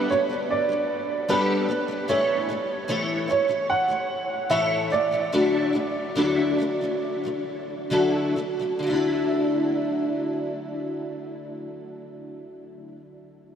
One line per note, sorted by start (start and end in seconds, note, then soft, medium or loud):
0.00 0.11 B3 medium
0.00 0.11 D4 medium
0.00 0.11 G4 medium
0.00 0.11 A4 medium
0.10 0.28 G3 medium
0.10 0.31 B3 medium
0.10 0.19 C#5 medium
0.30 0.62 G3 soft
0.30 0.63 B3 soft
0.51 1.32 D5 medium
0.69 1.01 G3 soft
0.69 1.03 B3 soft
1.28 1.67 G3 medium
1.28 1.69 B3 medium
1.28 1.69 D4 medium
1.28 1.69 G4 medium
1.28 1.70 A4 medium
1.28 2.05 B4 medium
1.69 1.87 G3 medium
1.69 1.90 B3 medium
1.88 2.08 G3 soft
1.88 2.09 B3 soft
2.08 2.47 A2 medium
2.08 2.48 E3 medium
2.08 2.49 A3 medium
2.08 2.49 E4 medium
2.08 2.49 A4 medium
2.08 2.84 C#5 medium
2.08 2.49 C#5 medium
2.49 2.80 A2 medium
2.49 2.81 E3 medium
2.49 2.82 A3 medium
2.88 3.26 A2 medium
2.88 3.28 E3 medium
2.88 3.28 A3 medium
2.88 3.28 E4 medium
2.88 3.29 A4 medium
2.88 3.29 C#5 medium
3.28 3.47 A2 medium
3.28 3.48 E3 medium
3.28 3.49 A3 medium
3.28 3.70 C#5 medium
3.48 3.80 A2 soft
3.48 3.81 E3 soft
3.48 3.81 A3 soft
3.70 4.52 F#5 medium
3.88 4.21 A2 soft
3.88 4.22 E3 soft
3.88 4.22 A3 soft
4.49 4.89 A2 medium
4.49 4.91 E3 medium
4.49 4.91 A3 medium
4.49 4.91 E4 medium
4.49 4.91 A4 medium
4.49 4.91 C#5 medium
4.49 4.88 E5 medium
4.90 5.10 A2 soft
4.90 5.11 E3 medium
4.90 5.12 A3 medium
4.90 7.88 D5 medium
5.11 5.32 A2 soft
5.11 5.32 E3 soft
5.11 5.32 A3 soft
5.32 5.72 D3 medium
5.32 5.74 F#3 medium
5.32 5.74 A3 medium
5.32 5.74 D4 medium
5.32 5.75 E4 medium
5.32 5.75 A4 medium
5.73 6.07 D3 medium
5.73 6.08 F#3 medium
5.73 6.09 A3 medium
6.15 6.57 D3 medium
6.15 6.59 F#3 medium
6.15 6.59 A3 medium
6.15 6.59 D4 medium
6.15 6.59 E4 medium
6.15 6.60 A4 medium
6.59 6.80 D3 medium
6.59 6.81 F#3 medium
6.59 6.82 A3 medium
6.81 7.16 D3 soft
6.81 7.16 F#3 soft
6.81 7.17 A3 medium
7.24 7.59 D3 soft
7.24 7.60 F#3 soft
7.24 7.61 A3 soft
7.90 8.35 D3 medium
7.90 8.36 F#3 medium
7.90 8.36 A3 medium
7.90 8.37 D4 medium
7.90 8.37 E4 medium
7.90 8.37 A4 medium
8.36 8.58 D3 medium
8.36 8.60 F#3 medium
8.36 8.60 A3 medium
8.59 8.78 D3 soft
8.59 8.81 F#3 soft
8.59 8.84 A3 soft
8.79 12.88 D3 medium
8.79 12.91 F#3 medium
8.87 12.95 A3 medium
8.87 12.98 D4 medium
8.93 13.01 E4 medium
8.93 13.04 A4 medium